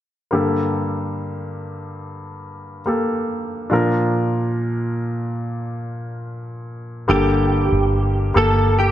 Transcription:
0.31 G2 D3 A#3 G4 A4
2.86 A#3 G4 A4
3.70 A#2 F3 D4 F4 A#4
7.08 G1 G2 D3 A#3 G4 A4
7.72 G1
8.34 G1 A#3 G4 A4
8.79 G4

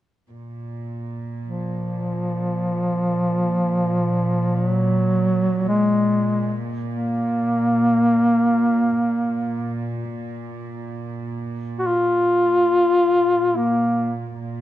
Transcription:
0.30 A#2
1.46 F3
4.55 F3
4.67 F#3
5.68 G#3
6.90 A#3
11.79 F#4
11.87 F4
13.56 A#3
14.36 A#2

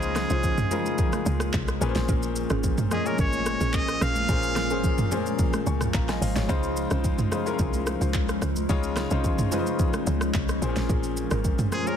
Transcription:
Already playing: C#2 C#3 F3 G#3 A#3 C#4 D#4 F4 G#4 A#4 C5
0.02 shaker
0.16 cross-stick, snare, shaker
0.30 C2 G#3 C#4 D#4 F4 C5, shaker
0.43 kick, low conga, shaker
0.58 mid tom, high conga, shaker
0.71 C#3 G#3 C#4 D#4 F4 A#4 C5, high conga, low conga, shaker
0.86 shaker
0.98 kick, low conga, shaker
1.13 cross-stick, high conga, shaker
1.26 C#2, shaker
1.40 cross-stick, shaker
1.53 C2, kick, clap, shaker
1.68 cross-stick, shaker
1.81 A#1 A#2 A#3 C#4 F4 G#4 B4, shaker
1.89 C5
1.95 A#1, snare, high conga, shaker
2.09 A#1 C#4 G#4 A#4, kick, low conga, shaker
2.23 shaker
2.36 shaker
2.50 G#1 C#4 G#4 A#4, cross-stick, shaker
2.63 kick, low conga, shaker
2.78 mid tom, high conga, shaker
2.91 A#2 A#3 C#4 G#4 D#5, cross-stick, high conga, low conga, shaker
3.05 A#2 A#3 C#4 G#4 A#4 C#5, shaker
3.18 G#1 C#4 G#4 A#4 C#5, kick, low conga, shaker
3.33 high conga, shaker
3.46 cross-stick, shaker
3.60 A#1 C#4 G#4 A#4, shaker
3.73 D#5, kick, clap, shaker
3.88 cross-stick, shaker
4.01 A#1 C#4 G#4 A#4 F5, cross-stick, shaker
4.16 high conga, shaker
4.28 A#1 A#2 A#3 C#4 G#4 C5, kick, low conga, shaker
4.43 shaker
4.56 cross-stick, snare, shaker
4.70 G#1 A#2 A#3 C#4 G#4 A#4 C5, shaker
4.83 kick, low conga, shaker
4.98 mid tom, high conga, shaker
5.11 A#2 A#3 C#4 G#4 A#4 C5, high conga, low conga, shaker
5.26 shaker
5.39 kick, low conga, shaker
5.53 cross-stick, high conga, shaker
5.67 C#2 G#5 C#6, shaker
5.81 cross-stick, mid tom, shaker
5.94 A#1 F5 A#5, kick, clap, shaker
6.09 D#5 G#5, cross-stick, snare, shaker
6.21 G#1 C5 F5, open hi-hat, shaker
6.36 G#1 G#4 C#5, snare, high conga, shaker
6.49 C#2 C#3 G#3 C#4 D#4 F4 C5, kick, low conga, shaker
6.63 shaker
6.77 shaker
6.91 C2 C#4 F4 C5, cross-stick, shaker
7.04 kick, low conga, shaker
7.18 mid tom, high conga, shaker
7.31 C#3 G#3 D#4 F4 C5, cross-stick, high conga, low conga, shaker
7.46 G#3 C#4 D#4 E4 A#4, shaker
7.54 F4
7.59 C2 C#4 F4 C5, kick, low conga, shaker
7.73 high conga, shaker
7.87 cross-stick, shaker
8.01 C#2 C#4 F4 C5, shaker
8.14 kick, clap, shaker
8.29 cross-stick, shaker
8.41 C#2 C#4 F4 C5, cross-stick, shaker
8.56 high conga, shaker
8.69 C#2 C#3 G#3 C#4 D#4 F4 C#5, kick, low conga, shaker
8.83 shaker
8.97 cross-stick, snare, shaker
9.11 C2 G#3 C#4 D#4 F4 C5, shaker
9.24 kick, low conga, shaker
9.39 mid tom, high conga, shaker
9.52 C#3 G#3 C#4 D#4 F4 B4 C5, high conga, low conga, shaker
9.59 C5
9.67 shaker
9.79 kick, low conga, shaker
9.94 cross-stick, high conga, shaker
10.07 C#2, shaker
10.21 cross-stick, shaker
10.34 C2, kick, clap, shaker
10.49 cross-stick, shaker
10.62 A#1 A#2 A#3 C4 G#4 C5, shaker
10.69 C#4
10.76 A#1, snare, high conga, shaker
10.89 A#1 C#4 G#4 A#4, kick, low conga, shaker
11.03 shaker
11.17 shaker
11.31 G#1 C#4 G#4 A#4, cross-stick, shaker
11.44 kick, low conga, shaker
11.59 mid tom, high conga, shaker
11.72 A#2 A#3 C#4 G#4 C5, cross-stick, high conga, low conga, shaker
11.86 A#2 A#3 C#4 G#4 A#4 C#5, shaker

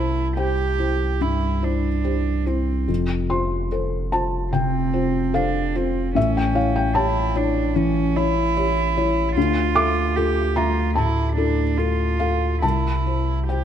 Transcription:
Already playing: C2 E4 C5 A5
0.37 G4 C5 G5
0.79 E4 C5
1.21 G2 E4
1.62 D4 E4 C5
2.04 G4 C5
2.46 C4 E4 C5
2.88 F1 F2
3.30 F4 C5 C6
3.72 A4 C5
4.12 F4 C5 A5
4.52 C3 C4 G5
4.93 F4 C5
5.34 D4 A4 C5 F5
5.75 C4 F4 C5
6.15 A1 A2 C#4 E5
6.37 G5
6.55 E4 C#5 F5
6.76 G5
6.95 E4 G4 C#5 A5
7.35 D4 E4 C#5
7.76 E3 C#4
8.16 E4 C#5
8.57 G4 C#5
8.97 E4 C#5
9.36 D2 F4
9.75 A4 E5 D6
10.16 F4 G4 A4
10.56 A3 F4 E5 A#5
10.95 A2 E4 A5
11.37 D4 E4 A4
11.77 F4 A4
12.20 F4 A4 F5
12.62 C2 E4 A5
13.06 E4 C5
13.49 G4 C5 G5

